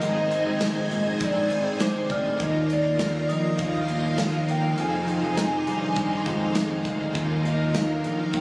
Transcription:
0.00 0.45 G#1 loud
0.00 1.20 G#2 medium
0.00 2.39 G#2 medium
0.00 1.14 D#3 medium
0.00 2.38 D#3 medium
0.00 1.19 G#3 medium
0.00 2.35 D#4 medium
0.00 0.60 D#4 medium
0.00 2.37 G#4 medium
0.00 2.37 C5 medium
0.00 1.27 D#5 loud
0.00 0.28 G#5 medium
0.00 2.38 G#5 medium
0.00 0.28 C6 medium
0.00 closed hi-hat medium
0.05 1.21 C4 medium
0.05 1.23 D#4 medium
0.05 1.24 G#4 medium
0.31 1.49 C4 medium
0.31 closed hi-hat medium
0.46 0.89 G#1 loud
0.60 1.20 D#4 medium
0.60 snare loud
0.60 closed hi-hat medium
0.60 tambourine medium
0.90 1.47 A#1 medium
0.90 1.79 G#3 medium
0.90 closed hi-hat medium
1.20 1.78 G#3 medium
1.20 1.80 C4 medium
1.20 2.40 D#4 medium
1.20 1.82 D#4 medium
1.20 kick loud
1.20 closed hi-hat medium
1.25 1.83 G#4 medium
1.25 1.84 D5 loud
1.50 2.07 G#1 loud
1.50 2.09 C4 medium
1.50 closed hi-hat medium
1.80 2.37 G#3 medium
1.80 2.46 G#3 medium
1.80 2.40 C4 medium
1.80 2.43 D#4 medium
1.80 2.13 C5 medium
1.80 2.66 D6 medium
1.80 snare loud
1.80 closed hi-hat medium
1.80 tambourine medium
1.84 2.42 G#4 medium
2.10 2.38 D2 medium
2.10 2.46 C4 medium
2.10 2.40 D5 medium
2.10 2.66 F6 medium
2.10 kick medium
2.10 closed hi-hat medium
2.38 3.25 D#2 loud
2.38 3.57 D#3 medium
2.38 4.81 D#3 medium
2.38 3.59 A#3 medium
2.38 8.41 D#4 medium
2.38 2.99 D#4 medium
2.38 4.75 F4 medium
2.38 4.75 A#4 medium
2.38 8.41 F5 medium
2.38 kick loud
2.38 closed hi-hat medium
2.43 3.61 D#4 medium
2.43 3.62 F4 medium
2.43 2.74 D#5 loud
2.69 3.88 A#3 medium
2.69 3.33 D5 loud
2.69 closed hi-hat medium
2.99 3.59 D#4 medium
2.99 snare loud
2.99 closed hi-hat medium
2.99 tambourine medium
3.29 3.57 A#1 loud
3.29 4.18 F3 medium
3.29 3.63 D#5 loud
3.29 5.03 D#6 medium
3.29 closed hi-hat medium
3.58 4.74 D#2 loud
3.58 4.17 D#3 medium
3.58 4.18 A#3 medium
3.58 4.79 D#4 medium
3.58 kick loud
3.58 closed hi-hat medium
3.62 4.21 D#4 medium
3.62 4.20 F4 medium
3.62 4.52 F5 loud
3.88 4.48 A#3 medium
3.88 closed hi-hat soft
4.17 4.79 D#3 medium
4.17 5.40 F3 medium
4.17 4.78 A#3 medium
4.17 4.82 D#4 medium
4.17 snare loud
4.17 closed hi-hat medium
4.17 tambourine medium
4.22 4.82 F4 medium
4.49 4.84 A#3 medium
4.49 4.79 G5 loud
4.49 closed hi-hat medium
4.76 5.95 F2 medium
4.76 5.20 F2 loud
4.76 7.16 F2 medium
4.76 5.96 C3 medium
4.76 5.95 D#3 medium
4.76 5.37 D#4 medium
4.76 7.13 G#4 medium
4.76 7.13 C5 medium
4.76 closed hi-hat medium
4.80 5.97 G#3 medium
4.80 5.98 C4 medium
4.80 6.01 F4 medium
4.80 6.83 G#5 loud
5.08 closed hi-hat medium
5.22 5.64 F2 loud
5.36 5.96 D#4 medium
5.36 7.40 A#5 medium
5.36 snare loud
5.36 closed hi-hat medium
5.36 tambourine medium
5.58 7.59 D6 medium
5.67 6.23 G2 medium
5.67 6.55 D#3 medium
5.67 closed hi-hat medium
5.96 6.54 D#3 medium
5.96 6.56 G#3 medium
5.96 6.57 C4 medium
5.96 7.15 D#4 medium
5.96 7.42 G#5 medium
5.96 kick loud
5.96 closed hi-hat medium
6.01 6.59 F4 medium
6.18 7.59 C6 medium
6.26 6.83 F2 medium
6.26 6.84 G#3 medium
6.26 kick medium
6.26 closed hi-hat soft
6.55 7.12 D#3 medium
6.55 7.15 D#3 medium
6.55 7.15 G#3 medium
6.55 7.16 C4 medium
6.55 snare loud
6.55 closed hi-hat medium
6.55 tambourine medium
6.60 7.20 F4 medium
6.85 7.14 D2 loud
6.85 7.21 G#3 medium
6.85 kick medium
6.85 closed hi-hat medium
7.13 8.00 D#2 loud
7.13 8.33 D#3 medium
7.13 8.41 D#3 medium
7.13 8.34 A#3 medium
7.13 7.73 D#4 medium
7.13 8.41 F4 medium
7.13 8.41 A#4 medium
7.13 kick loud
7.13 closed hi-hat medium
7.18 8.36 D#4 medium
7.18 8.36 F4 medium
7.45 8.41 A#3 medium
7.45 7.79 D#5 medium
7.45 closed hi-hat medium
7.74 8.33 D#4 medium
7.74 8.38 F5 medium
7.74 snare loud
7.74 closed hi-hat medium
7.74 tambourine medium
8.04 8.32 A#1 medium
8.04 8.41 F3 medium
8.04 closed hi-hat medium
8.33 8.41 D#2 loud
8.33 8.41 D#3 medium
8.33 8.41 A#3 medium
8.33 8.41 D#4 medium
8.33 8.41 G5 loud
8.33 kick loud
8.33 closed hi-hat medium

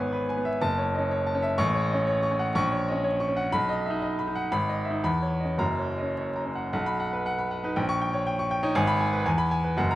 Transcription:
0.00 0.58 G#1 medium
0.00 0.20 B3 medium
0.00 0.12 B4 medium
0.00 0.12 C#5 medium
0.00 0.29 G#5 loud
0.12 0.39 B4 medium
0.29 0.55 G#5 medium
0.37 0.57 B3 medium
0.45 0.61 E5 medium
0.61 1.55 F#1 loud
0.61 0.88 A5 loud
0.78 1.04 C#5 medium
0.95 1.18 C#4 medium
0.95 1.10 D#5 medium
1.11 1.36 C#5 medium
1.27 1.52 A5 medium
1.35 1.53 C#4 medium
1.43 1.58 E5 medium
1.58 2.53 A1 loud
1.58 1.83 C#6 loud
1.74 2.00 C#5 medium
1.90 2.14 C#4 medium
1.90 2.07 D#5 medium
2.07 2.33 C#5 medium
2.23 2.49 C#6 medium
2.31 2.51 C#4 medium
2.39 2.55 F#5 medium
2.55 3.49 A#1 loud
2.55 2.81 C#6 loud
2.72 2.97 C#5 medium
2.88 3.11 C#4 medium
2.88 3.04 D#5 medium
3.04 3.30 C#5 medium
3.20 3.46 C#6 medium
3.28 3.48 C#4 medium
3.37 3.53 F#5 medium
3.52 4.49 B1 loud
3.52 3.79 B5 loud
3.69 3.95 D#5 medium
3.86 4.02 E5 medium
3.90 4.10 D#4 medium
4.02 4.29 D#5 medium
4.19 4.45 B5 medium
4.27 4.47 D#4 medium
4.35 4.52 F#5 medium
4.52 5.02 G#1 loud
4.52 4.79 B5 loud
4.69 4.97 D#5 medium
4.85 5.03 E5 medium
4.91 5.04 D#4 medium
5.04 5.58 E2 medium
5.04 5.33 B5 loud
5.22 5.52 C#5 medium
5.40 5.59 D#5 medium
5.45 5.59 C#4 medium
5.58 6.69 F#1 medium
5.58 6.70 F#2 medium
5.58 5.90 A#5 loud
5.78 6.09 C#5 medium
5.98 6.17 D#5 medium
6.02 6.26 C#4 medium
6.17 6.48 C#5 medium
6.36 6.66 A#5 medium
6.46 6.68 C#4 medium
6.55 6.72 F#5 medium
6.73 7.73 B1 medium
6.73 6.95 F#5 medium
6.86 7.08 B5 medium
7.00 7.21 F#5 medium
7.13 7.34 B4 medium
7.26 7.46 F#5 medium
7.38 7.59 B5 medium
7.51 7.71 F#5 medium
7.64 7.76 D#4 medium
7.64 7.76 B4 medium
7.76 8.72 A#1 loud
7.76 7.96 G5 medium
7.89 8.08 C#6 loud
8.01 8.21 G5 medium
8.14 8.33 C#5 medium
8.27 8.46 G5 medium
8.39 8.58 C#6 medium
8.51 8.71 G5 loud
8.63 8.75 D#4 loud
8.63 8.75 C#5 loud
8.75 9.24 G#1 loud
8.75 8.95 G#5 loud
8.87 9.07 B5 loud
9.00 9.20 G#5 medium
9.13 9.25 B4 loud
9.25 9.76 E2 loud
9.25 9.46 G#5 loud
9.38 9.59 B5 loud
9.51 9.72 G#5 loud
9.64 9.77 B4 medium
9.77 9.95 F#1 loud
9.77 9.95 F#2 loud
9.77 9.95 F#5 medium
9.91 9.95 A#5 loud

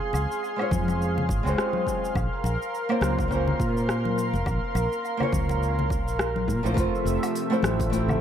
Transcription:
0.00 0.54 G#3 medium
0.00 0.55 C4 medium
0.00 0.55 C#4 medium
0.00 0.56 F4 medium
0.00 2.12 G#4 medium
0.00 0.57 C5 medium
0.00 6.73 F5 medium
0.00 2.12 C6 medium
0.13 0.25 C#2 medium
0.13 muted conga soft
0.13 cabasa medium
0.13 low woodblock medium
0.32 cabasa soft
0.44 cabasa soft
0.56 1.40 G#3 medium
0.56 1.42 C#4 medium
0.56 1.41 C5 medium
0.56 low woodblock medium
0.61 1.43 F4 medium
0.61 1.43 C#5 medium
0.71 1.30 F2 medium
0.71 kick loud
0.71 muted conga soft
0.71 high conga loud
0.71 cabasa medium
0.88 muted conga medium
0.88 cabasa soft
1.02 cabasa soft
1.18 muted conga soft
1.18 low conga medium
1.29 1.40 G#1 medium
1.29 kick loud
1.29 cabasa medium
1.43 1.54 C#2 loud
1.43 2.13 G#3 medium
1.43 2.14 C4 medium
1.43 2.14 C#4 medium
1.43 2.15 F4 medium
1.43 cabasa soft
1.49 2.16 C5 medium
1.58 cross-stick medium
1.58 cabasa soft
1.73 high conga medium
1.87 kick medium
1.87 cabasa medium
2.05 cabasa soft
2.15 2.27 A#1 medium
2.15 6.74 A#4 medium
2.15 6.74 C6 medium
2.15 kick loud
2.15 cabasa soft
2.15 low woodblock medium
2.44 2.56 A#1 medium
2.44 muted conga medium
2.44 cabasa medium
2.62 cabasa soft
2.75 cabasa soft
2.89 3.27 A#3 medium
2.89 3.28 C4 medium
2.89 3.28 C#4 medium
2.89 3.29 F4 medium
2.89 3.29 C5 loud
2.89 low woodblock medium
3.01 3.53 C#2 medium
3.01 cross-stick medium
3.01 muted conga soft
3.01 high conga medium
3.01 cabasa medium
3.19 kick loud
3.19 cabasa soft
3.28 5.15 A#3 medium
3.28 5.16 C4 medium
3.28 5.16 C#4 medium
3.28 5.17 F4 medium
3.28 kick medium
3.28 cabasa soft
3.33 5.18 C5 medium
3.48 low conga medium
3.60 4.35 A#2 medium
3.60 kick medium
3.60 cabasa medium
3.77 cabasa soft
3.89 cross-stick medium
3.89 cabasa soft
4.05 high conga medium
4.18 cabasa medium
4.33 4.42 F1 medium
4.33 muted conga medium
4.33 cabasa soft
4.46 4.58 A#1 medium
4.46 kick loud
4.46 cabasa soft
4.46 low woodblock medium
4.75 4.87 A#1 medium
4.75 muted conga soft
4.75 cabasa medium
4.75 low woodblock medium
4.92 cabasa soft
5.05 cabasa soft
5.17 6.02 A#3 medium
5.17 6.03 C#4 medium
5.17 6.02 C5 medium
5.17 low conga medium
5.17 low woodblock medium
5.21 6.04 F4 medium
5.21 6.04 C#5 medium
5.32 6.06 C#2 medium
5.32 kick loud
5.32 muted conga medium
5.32 high conga medium
5.32 cabasa medium
5.49 muted conga medium
5.49 cabasa soft
5.63 cabasa soft
5.79 muted conga medium
5.79 low conga medium
5.90 kick medium
5.90 cabasa medium
6.06 6.50 A#1 loud
6.06 cabasa soft
6.19 cross-stick medium
6.19 cabasa soft
6.36 high conga medium
6.48 6.60 A#2 loud
6.48 kick medium
6.48 cabasa medium
6.63 6.73 A#1 medium
6.63 7.05 F3 medium
6.63 6.73 A3 medium
6.63 6.74 C4 medium
6.63 6.75 E4 medium
6.63 6.78 C5 loud
6.63 cabasa soft
6.74 6.89 F1 medium
6.74 8.21 C3 medium
6.74 8.21 F3 medium
6.74 7.43 A3 medium
6.74 8.21 A3 medium
6.74 7.44 C4 medium
6.74 8.21 E5 medium
6.74 kick loud
6.74 open hi-hat medium
6.78 7.45 F4 medium
6.78 7.46 C5 loud
6.78 cabasa soft
6.95 cabasa soft
7.05 7.17 F1 medium
7.05 open hi-hat soft
7.05 cabasa medium
7.23 open hi-hat soft
7.23 cabasa soft
7.23 low woodblock medium
7.35 open hi-hat medium
7.35 cabasa soft
7.50 7.89 A3 loud
7.50 7.89 C4 medium
7.50 7.90 E4 medium
7.50 7.90 F4 medium
7.50 7.90 C5 loud
7.50 cabasa soft
7.63 8.15 A1 medium
7.63 cross-stick medium
7.63 open hi-hat soft
7.63 high conga medium
7.63 cabasa medium
7.80 kick loud
7.80 open hi-hat soft
7.80 muted conga medium
7.80 cabasa soft
7.90 8.21 A3 medium
7.90 8.21 C4 medium
7.90 8.21 E4 medium
7.90 open hi-hat medium
7.94 8.21 F4 medium
7.94 8.21 C5 medium
7.94 cabasa soft
8.09 low conga loud
8.09 cabasa soft
8.09 low woodblock medium

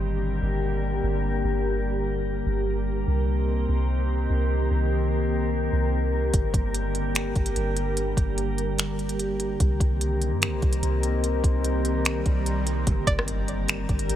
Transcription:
0.00 0.39 G1 loud
0.00 3.04 D3 medium
0.00 3.04 G3 medium
0.00 9.56 A#3 medium
0.00 3.04 G4 medium
0.00 9.56 A#4 medium
0.42 1.01 G1 loud
1.03 1.42 G1 loud
1.44 2.42 G1 loud
2.46 3.05 G1 medium
3.07 3.66 C2 loud
3.07 6.30 D#3 medium
3.07 6.30 C4 medium
3.07 6.30 G4 medium
3.69 4.27 C2 loud
4.30 4.69 C2 loud
4.71 5.69 C2 loud
5.72 6.31 C2 loud
6.34 6.53 G1 loud
6.34 9.57 D3 medium
6.34 9.57 G3 medium
6.34 12.83 G4 medium
6.34 kick loud
6.34 closed hi-hat medium
6.54 7.32 G1 loud
6.54 kick loud
6.54 closed hi-hat medium
6.74 closed hi-hat medium
6.95 closed hi-hat medium
7.15 finger snap loud
7.15 closed hi-hat medium
7.36 7.55 G1 loud
7.36 kick medium
7.36 closed hi-hat soft
7.46 closed hi-hat medium
7.56 8.15 G1 loud
7.56 closed hi-hat medium
7.77 closed hi-hat medium
7.97 closed hi-hat medium
8.17 9.56 G1 loud
8.17 kick medium
8.17 closed hi-hat medium
8.38 closed hi-hat medium
8.58 closed hi-hat medium
8.78 finger snap loud
8.78 closed hi-hat medium
8.99 closed hi-hat soft
9.09 closed hi-hat medium
9.19 closed hi-hat medium
9.40 closed hi-hat medium
9.60 9.80 C2 loud
9.60 12.83 D#3 medium
9.60 12.83 A#3 medium
9.60 12.83 C4 medium
9.60 12.83 A#4 medium
9.60 kick loud
9.60 closed hi-hat medium
9.60 swell medium
9.80 10.33 C2 loud
9.80 kick medium
9.80 closed hi-hat medium
10.01 closed hi-hat medium
10.22 closed hi-hat medium
10.32 10.48 G2 loud
10.42 finger snap loud
10.42 closed hi-hat medium
10.47 10.62 C2 loud
10.62 10.82 C2 loud
10.62 kick medium
10.62 closed hi-hat soft
10.73 closed hi-hat medium
10.83 11.41 C2 loud
10.83 closed hi-hat medium
11.03 closed hi-hat medium
11.24 closed hi-hat medium
11.44 12.22 C2 loud
11.44 kick medium
11.44 closed hi-hat medium
11.64 closed hi-hat medium
11.85 closed hi-hat medium
12.05 finger snap loud
12.05 closed hi-hat medium
12.26 12.85 C2 loud
12.26 kick medium
12.26 closed hi-hat medium
12.46 closed hi-hat medium
12.67 closed hi-hat medium
12.87 13.06 G1 loud
12.87 14.16 D3 medium
12.87 14.16 G3 medium
12.87 14.16 A#3 medium
12.87 14.16 G4 medium
12.87 14.16 A#4 medium
12.87 kick loud
12.87 closed hi-hat medium
12.87 impact medium
13.07 13.86 G1 loud
13.07 13.65 D5 medium
13.07 kick loud
13.07 closed hi-hat medium
13.19 cross-stick loud
13.28 closed hi-hat medium
13.48 closed hi-hat medium
13.68 finger snap loud
13.68 closed hi-hat medium
13.89 14.09 G1 loud
13.89 kick medium
13.89 closed hi-hat soft
13.99 closed hi-hat medium
14.09 14.16 G1 loud
14.09 closed hi-hat medium

